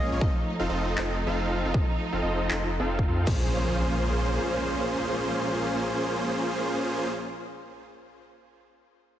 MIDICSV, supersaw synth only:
0, 0, Header, 1, 2, 480
1, 0, Start_track
1, 0, Key_signature, -5, "minor"
1, 0, Tempo, 382166
1, 269, Time_signature, 4, 2, 24, 8
1, 11543, End_track
2, 0, Start_track
2, 0, Title_t, "Supersaw synth"
2, 0, Program_c, 0, 81
2, 153, Note_on_c, 0, 58, 76
2, 153, Note_on_c, 0, 61, 71
2, 153, Note_on_c, 0, 65, 69
2, 153, Note_on_c, 0, 68, 72
2, 153, Note_on_c, 0, 73, 87
2, 240, Note_off_c, 0, 61, 0
2, 240, Note_off_c, 0, 68, 0
2, 241, Note_off_c, 0, 58, 0
2, 241, Note_off_c, 0, 65, 0
2, 241, Note_off_c, 0, 73, 0
2, 268, Note_on_c, 0, 65, 71
2, 269, Note_on_c, 0, 60, 79
2, 269, Note_on_c, 0, 63, 70
2, 269, Note_on_c, 0, 69, 72
2, 269, Note_on_c, 0, 75, 86
2, 376, Note_off_c, 0, 60, 0
2, 376, Note_off_c, 0, 63, 0
2, 376, Note_off_c, 0, 65, 0
2, 376, Note_off_c, 0, 69, 0
2, 377, Note_off_c, 0, 75, 0
2, 748, Note_on_c, 0, 60, 73
2, 748, Note_on_c, 0, 63, 67
2, 748, Note_on_c, 0, 65, 69
2, 748, Note_on_c, 0, 69, 68
2, 748, Note_on_c, 0, 77, 80
2, 843, Note_off_c, 0, 60, 0
2, 843, Note_off_c, 0, 63, 0
2, 843, Note_off_c, 0, 65, 0
2, 843, Note_off_c, 0, 69, 0
2, 843, Note_off_c, 0, 77, 0
2, 873, Note_on_c, 0, 60, 77
2, 873, Note_on_c, 0, 63, 69
2, 873, Note_on_c, 0, 65, 71
2, 873, Note_on_c, 0, 69, 70
2, 873, Note_on_c, 0, 75, 85
2, 1200, Note_off_c, 0, 65, 0
2, 1200, Note_off_c, 0, 75, 0
2, 1201, Note_off_c, 0, 60, 0
2, 1201, Note_off_c, 0, 63, 0
2, 1201, Note_off_c, 0, 69, 0
2, 1227, Note_on_c, 0, 60, 85
2, 1227, Note_on_c, 0, 69, 72
2, 1227, Note_on_c, 0, 75, 87
2, 1228, Note_on_c, 0, 63, 75
2, 1228, Note_on_c, 0, 65, 75
2, 1440, Note_off_c, 0, 60, 0
2, 1440, Note_off_c, 0, 63, 0
2, 1440, Note_off_c, 0, 65, 0
2, 1440, Note_off_c, 0, 69, 0
2, 1440, Note_off_c, 0, 75, 0
2, 1592, Note_on_c, 0, 60, 83
2, 1593, Note_on_c, 0, 63, 81
2, 1593, Note_on_c, 0, 65, 82
2, 1593, Note_on_c, 0, 69, 77
2, 1593, Note_on_c, 0, 77, 101
2, 2043, Note_off_c, 0, 60, 0
2, 2043, Note_off_c, 0, 63, 0
2, 2043, Note_off_c, 0, 65, 0
2, 2043, Note_off_c, 0, 69, 0
2, 2043, Note_off_c, 0, 77, 0
2, 2073, Note_on_c, 0, 60, 77
2, 2073, Note_on_c, 0, 63, 71
2, 2073, Note_on_c, 0, 65, 68
2, 2073, Note_on_c, 0, 69, 71
2, 2073, Note_on_c, 0, 77, 84
2, 2161, Note_off_c, 0, 60, 0
2, 2161, Note_off_c, 0, 63, 0
2, 2161, Note_off_c, 0, 65, 0
2, 2161, Note_off_c, 0, 69, 0
2, 2161, Note_off_c, 0, 77, 0
2, 2188, Note_on_c, 0, 60, 78
2, 2188, Note_on_c, 0, 65, 70
2, 2188, Note_on_c, 0, 69, 74
2, 2189, Note_on_c, 0, 63, 67
2, 2189, Note_on_c, 0, 75, 85
2, 2296, Note_off_c, 0, 60, 0
2, 2296, Note_off_c, 0, 63, 0
2, 2296, Note_off_c, 0, 65, 0
2, 2296, Note_off_c, 0, 69, 0
2, 2297, Note_off_c, 0, 75, 0
2, 2669, Note_on_c, 0, 60, 72
2, 2669, Note_on_c, 0, 63, 66
2, 2669, Note_on_c, 0, 65, 65
2, 2669, Note_on_c, 0, 69, 66
2, 2669, Note_on_c, 0, 77, 83
2, 2763, Note_off_c, 0, 69, 0
2, 2763, Note_off_c, 0, 77, 0
2, 2764, Note_off_c, 0, 60, 0
2, 2764, Note_off_c, 0, 63, 0
2, 2764, Note_off_c, 0, 65, 0
2, 2793, Note_on_c, 0, 60, 71
2, 2793, Note_on_c, 0, 63, 68
2, 2793, Note_on_c, 0, 65, 68
2, 2793, Note_on_c, 0, 69, 70
2, 2793, Note_on_c, 0, 75, 82
2, 3120, Note_off_c, 0, 65, 0
2, 3121, Note_off_c, 0, 60, 0
2, 3121, Note_off_c, 0, 63, 0
2, 3121, Note_off_c, 0, 69, 0
2, 3121, Note_off_c, 0, 75, 0
2, 3148, Note_on_c, 0, 60, 81
2, 3148, Note_on_c, 0, 63, 73
2, 3148, Note_on_c, 0, 65, 73
2, 3148, Note_on_c, 0, 69, 74
2, 3149, Note_on_c, 0, 75, 89
2, 3361, Note_off_c, 0, 60, 0
2, 3361, Note_off_c, 0, 63, 0
2, 3361, Note_off_c, 0, 65, 0
2, 3361, Note_off_c, 0, 69, 0
2, 3361, Note_off_c, 0, 75, 0
2, 3513, Note_on_c, 0, 60, 96
2, 3513, Note_on_c, 0, 63, 85
2, 3513, Note_on_c, 0, 65, 81
2, 3513, Note_on_c, 0, 69, 84
2, 3513, Note_on_c, 0, 77, 103
2, 3840, Note_off_c, 0, 60, 0
2, 3840, Note_off_c, 0, 65, 0
2, 3840, Note_off_c, 0, 77, 0
2, 3841, Note_off_c, 0, 63, 0
2, 3841, Note_off_c, 0, 69, 0
2, 3869, Note_on_c, 0, 60, 86
2, 3869, Note_on_c, 0, 63, 75
2, 3869, Note_on_c, 0, 65, 78
2, 3869, Note_on_c, 0, 69, 79
2, 3869, Note_on_c, 0, 77, 96
2, 4081, Note_off_c, 0, 60, 0
2, 4081, Note_off_c, 0, 63, 0
2, 4081, Note_off_c, 0, 65, 0
2, 4081, Note_off_c, 0, 69, 0
2, 4081, Note_off_c, 0, 77, 0
2, 4109, Note_on_c, 0, 58, 80
2, 4109, Note_on_c, 0, 61, 75
2, 4109, Note_on_c, 0, 65, 78
2, 4109, Note_on_c, 0, 68, 77
2, 4109, Note_on_c, 0, 72, 91
2, 8903, Note_off_c, 0, 58, 0
2, 8903, Note_off_c, 0, 61, 0
2, 8903, Note_off_c, 0, 65, 0
2, 8903, Note_off_c, 0, 68, 0
2, 8903, Note_off_c, 0, 72, 0
2, 11543, End_track
0, 0, End_of_file